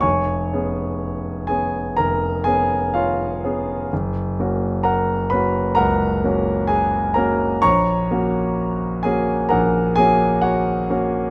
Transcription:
\new Staff \with { instrumentName = "Grand piano" } { \time 4/4 \key fis \major \tempo 4 = 64 << { <cis'' gis'' cis'''>4. <gis' gis''>8 <ais' ais''>8 <gis' gis''>8 <eis' cis'' eis''>4 | r4 <ais' fis'' ais''>8 <b' b''>8 <ais' fis'' ais''>4 <gis' gis''>8 <ais' ais''>8 | <cis'' ais'' cis'''>4. <gis' gis''>8 <ais' fis'' ais''>8 <gis' gis''>8 <fis' cis'' fis''>4 | } \\ { eis,,8 <b cis' gis'>4 <b cis'>8 eis,,8 <b cis'>4 <b cis' gis'>8 | fis,,8 <ais cis' fis'>4 <ais cis' fis'>8 cis,8 <ais cis' fis'>4 <ais cis' fis'>8 | ais,,8 <ais cis' fis'>4 <ais cis' fis'>8 ais,,8 <ais cis' fis'>4 <ais cis' fis'>8 | } >> }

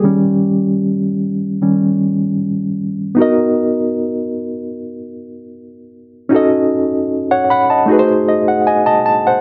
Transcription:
\new Staff \with { instrumentName = "Reed electric piano" } { \time 4/4 \key b \lydian \tempo 4 = 76 << { g'2. r4 | r1 | r4 r16 <cis'' fis''>16 <fis'' b''>16 <dis'' a''>8 r16 dis''16 fis''16 <dis'' gis''>16 <dis'' a''>16 a''16 <bis' fis''>16 | } \\ { <dis g cis'>2 <dis g cis'>8 r4. | <b dis' fis' ais' dis''>1 | <cis' dis' fis' a' dis''>2 <a dis' fis' gis' b' bis'>2 | } >> }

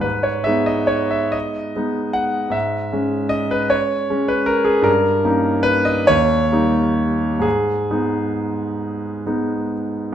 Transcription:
<<
  \new Staff \with { instrumentName = "Grand piano" } { \time 6/8 \key gis \minor \tempo 4. = 46 b'16 cis''16 e''16 dis''16 cis''16 e''16 dis''4 fis''8 | e''4 dis''16 b'16 cis''8. b'16 ais'16 gis'16 | ais'4 b'16 dis''16 cis''4. | gis'2~ gis'8 r8 | }
  \new Staff \with { instrumentName = "Grand piano" } { \time 6/8 \key gis \minor gis,8 <gis b dis'>4. <gis b dis'>4 | gis,8 <gis cis'>4. <gis cis'>4 | g,8 <ais cis' dis'>4 dis,8 <g ais dis'>4 | gis,8 <gis b dis'>4. <gis b dis'>4 | }
>>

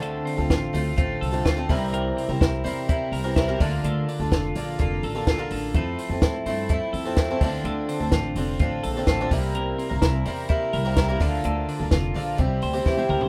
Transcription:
<<
  \new Staff \with { instrumentName = "Clean electric guitar" } { \time 4/4 \key c \mixolydian \tempo 4 = 126 <d a'>8 c'8 f'8 c'8 f'8 a'8 f'8 c8 | <c bes'>8 c'8 e'8 c'8 e'8 bes'8 e'8 d8 | <d a'>8 d'8 f'8 d'8 f'8 a'8 f'8 a'8 | <f a'>8 c'8 e'8 c'8 e'8 a'8 e'8 d8 |
<d a'>8 c'8 f'8 c'8 f'8 a'8 f'8 c8 | <c bes'>8 c'8 e'8 c'8 e'8 bes'8 e'8 d8 | <d a'>8 d'8 f'8 d'8 c8 c''8 e'8 bes'16 c''16 | }
  \new Staff \with { instrumentName = "Twelve-string acoustic guitar" } { \time 4/4 \key c \mixolydian <d a c' f' a'>8. <c' f' a'>8. <a c' f' a'>8 <a c' f' a'>8. <d a c' f' a'>8 <d a c' f' a'>16 <c e g c' e' bes'>8~ | <c e g c' e' bes'>8. <g c' e' bes'>8. <g c' e' bes'>8 <g c' e' bes'>8. <c e g c' e' bes'>8 <c e g c' e' bes'>16 <d bes d' f' a'>8~ | <d bes d' f' a'>8. <d' f' a'>8. <bes d' f' a'>8 <bes d' f' a'>8. <d bes d' f' a'>8 <d bes d' f' a'>8. | <a c' e' a'>8. <c' e' a'>8. <a c' e' a'>8 <a c' e' a'>8. <f a c' e' a'>8 <f a c' e' a'>16 <d f c' d' a'>8~ |
<d f c' d' a'>8. <c' d' a'>8. <f c' d' a'>8 <f c' d' a'>8. <d f c' d' a'>8 <d f c' d' a'>16 <c g bes e' bes'>8~ | <c g bes e' bes'>8. <bes e' bes'>8. <g bes e' bes'>8 <g bes e' bes'>8. <c g bes e' bes'>8 <c g bes e' bes'>16 <d f bes f' a'>8~ | <d f bes f' a'>8. <bes f' a'>8. <f bes f' a'>8 <g c' e' g'>8. <c g c' e' g'>8 <c g c' e' g'>8. | }
  \new Staff \with { instrumentName = "Upright bass" } { \clef bass \time 4/4 \key c \mixolydian d,8 r16 d,16 a,,8 d,8 a,,8 c,8 d,8 c,8~ | c,8 r16 c,16 c,8 e,8. r16 c,4 d,8 | d,8 r16 d,16 f,,8 bes,,8 f,,8 a,,8 bes,,8 a,,8 | f,8 r16 f,16 a,8 g,8. r16 f,4 d,8 |
d,8 r16 d,16 a,,8 f,,8 a,,8 bes,,8 a,,8 c,8~ | c,8 r16 c,16 c,8 e,8. r16 c,4 d,8 | d,8 r16 d,16 f,,8 bes,,8 c,8 d,8 e,8 d,8 | }
  \new DrumStaff \with { instrumentName = "Drums" } \drummode { \time 4/4 hh8 hho8 <hh bd sn>8 hho8 <hh bd>8 hho8 <hh bd sn>8 <hho bd>8 | hh8 hho8 <hh bd sn>8 hho8 <hh bd>8 hho8 <hh bd sn>8 <hho bd>8 | hh8 hho8 <hh bd sn>8 hho8 <hh bd>8 hho8 <hh bd sn>8 hho8 | <hh bd>8 hho8 <hh bd sn>8 hho8 <hh bd>8 hho8 <hh bd sn>8 <hho bd>8 |
hh8 hho8 <hh bd sn>8 hho8 <hh bd>8 hho8 <hh bd sn>8 <hho bd>8 | hh8 hho8 <hh bd sn>8 hho8 <hh bd>8 hho8 <hh bd sn>8 <hho bd>8 | hh8 hho8 <hh bd sn>8 hho8 <hh bd>8 hho8 <bd sn>16 tommh16 toml16 tomfh16 | }
>>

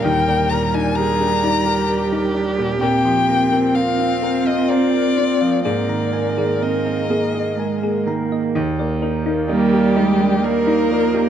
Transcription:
<<
  \new Staff \with { instrumentName = "Violin" } { \time 3/4 \key ees \major \tempo 4 = 64 g''8 bes''16 aes''16 bes''4. r8 | g''4 f''8. ees''16 d''4 | d''4 ees''4. r8 | r4 g'4 bes'4 | }
  \new Staff \with { instrumentName = "Synth pluck" } { \time 3/4 \key ees \major ees'16 d''16 bes'16 ees'16 g'16 g'16 ees'16 g'16 bes'16 ees'16 d''16 g'16 | bes'16 c'''16 bes''16 bes'16 f''16 f''16 bes'16 f''16 bes''16 bes'16 c'''16 f''16 | aes'16 bes''16 aes''16 aes'16 ees''16 ees''16 aes'16 ees''16 aes''16 aes'16 bes''16 ees''16 | ees'16 d''16 bes'16 ees'16 g'16 g'16 ees'16 g'16 bes'16 ees'16 d''16 g'16 | }
  \new Staff \with { instrumentName = "Ambient pad" } { \time 3/4 \key ees \major << { bes'2.~ | bes'2. | bes'2. | d''2. | } \\ { <d' g''>2. | <c' f'>2. | <bes aes'>2. | <bes bes'>2. | } >> }
  \new Staff \with { instrumentName = "Viola" } { \time 3/4 \key ees \major bes'4 aes'8 g'4.~ | g'4 f'2 | bes'2~ bes'8 r8 | r4 bes8 aes8 g8 f8 | }
  \new Staff \with { instrumentName = "Grand piano" } { \time 3/4 \key ees \major <ees, bes,>16 bes16 bes,16 d'16 bes'16 d'16 d''16 bes'16 d''16 bes'16 d'16 bes,16 | bes,16 f16 bes16 c'16 bes'16 c'16 c''16 bes'16 c''16 bes'16 c'16 f16 | aes,16 ees16 bes16 ees16 bes'16 bes16 bes'16 bes16 bes'16 bes16 ees16 bes16 | ees,16 bes16 ees'16 bes16 ees'16 bes'16 ees'16 d'16 bes'16 ees'16 bes'16 ees'16 | }
  \new Staff \with { instrumentName = "Cello" } { \time 3/4 \key ees \major g2. | c'2. | bes4 c'8 bes8 aes8 bes8 | r4 g4 bes4 | }
>>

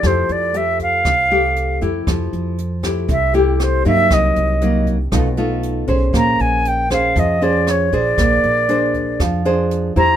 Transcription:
<<
  \new Staff \with { instrumentName = "Flute" } { \time 4/4 \key bes \lydian \tempo 4 = 118 c''8 d''8 e''8 f''2 r8 | r2 e''8 g'8 c''8 e''8 | ees''4. r2 r8 | bes''8 aes''8 g''8 f''8 ees''8 d''8 des''8 d''8~ |
d''2 r4. bes''8 | }
  \new Staff \with { instrumentName = "Nylon-string guitar" } { \time 4/4 \key bes \lydian << { <a e' g'>4 <a g'>4. <a g'>4 <a e' g'>8~ | <a e' g'>4 r8 <a e' g'>4 <a e' g'>4 <ges bes ees'>8~ | <ges bes ees'>4 <ges bes ees'>8 r8 <a dis' eis'>8 <a dis' eis'>4 <des' aes' c''>8~ | <des' aes' c''>4. <des' aes' c''>4 <des' aes' c''>4 <d' aes' c''>8~ |
<d' aes' c''>4 <d' aes' c''>4. <d' aes' c''>4 <e' g' c''>8 | } \\ { f2 c2 | f2 c2 | c2 b,2 | bes2 f2 |
bes2 f2 | } >> }
  \new Staff \with { instrumentName = "Upright bass" } { \clef bass \time 4/4 \key bes \lydian f,8 f,4. c,4. f,8 | f,8 f,4. c,4. g,8 | c,8 c,4. b,,4. b,,8 | bes,,8 bes,,4. f,4. bes,,8 |
bes,,8 bes,,4. f,4. e,8 | }
  \new DrumStaff \with { instrumentName = "Drums" } \drummode { \time 4/4 <hh bd ss>8 hh8 hh8 <hh bd>8 <hh bd ss>8 hh8 hh8 <hh bd>8 | <hh bd ss>8 hh8 hh8 <hh bd ss>8 <hh bd>8 hh8 <hh ss>8 <hh bd>8 | <hh bd ss>8 hh8 hh8 <hh bd>8 <hh bd ss>8 hh8 hh8 <hh bd>8 | <hh bd ss>8 hh8 hh8 <hh bd ss>8 <hh bd>8 hh8 <hh ss>8 <hh bd>8 |
<hh bd ss>8 hh8 hh8 <hh bd>8 <hh bd ss>8 hh8 hh8 <hh bd>8 | }
>>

